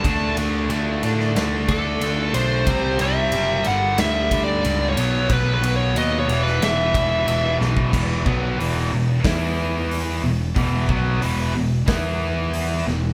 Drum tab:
CC |----------------|----------------|----------------|x---------------|
RD |x-x-x-x-x-x-x-x-|x-x-x-x-x-x-x-x-|x-x-x-x-x-x-x---|----------------|
HH |----------------|----------------|----------------|----o---o---o---|
SD |-------oo-------|--------o-------|-------oo-----o-|--------o-------|
BD |o---------o-----|o---------o-----|o---------o----o|o-o-----o-------|

CC |----------------|
RD |----------------|
HH |o---o---o---o---|
SD |--------o-----o-|
BD |o-o-----o-------|